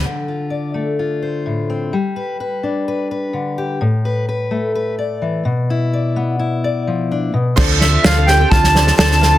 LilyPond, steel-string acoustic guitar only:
\new Staff \with { instrumentName = "Steel-string acoustic guitar" } { \time 4/4 \key d \dorian \tempo 4 = 127 << { r8 f'8 d''4 f'8 c''4 c'8 | r8 b'8 b'4 b'8 b'4 g'8 | r8 b'8 b'4 b'8 d''4 r8 | e'8 d''4 e'8 d''4 d'8 r8 |
r1 | } \\ { d4. a4. a,4 | g4. d'4. d4 | a,4. a4. e8 b,8~ | b,4 b4. f4 b,8 |
r1 | } >> }